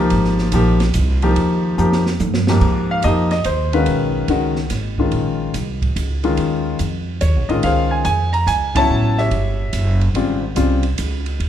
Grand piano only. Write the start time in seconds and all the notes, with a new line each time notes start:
Already playing: F3 A#3
0.00 D#4 G4
0.53 F3 A#3 D#4 G4
1.23 F3 A#3 D#4 G4
1.78 F3 A#3 D#4 G4
2.49 G#2 F3 A#3 D#4 G4
2.91 F5
3.04 F3 A#3 D#4 G4 D#5
3.31 D#5
3.45 C5
3.73 D#3 G#3 C#4 D#4 F#4 B4 F5
4.29 D#3 G#3 C#4 F#4
4.99 D#3 G#3 C#4 F4
6.24 D#3 G#3 C#4 F4
7.21 C#5
7.49 D#3 G#3 C#4 F4 D#5
7.64 G#4 C5 F5
7.91 G#5
8.05 G#5
8.33 A#5
8.47 G#5
8.74 C#3 F#3 B3 E4 C#5 E5 A5
9.18 G4 C#5 E5
10.15 C#3 G3 C4 F4
10.56 C#3 G3 C4 F4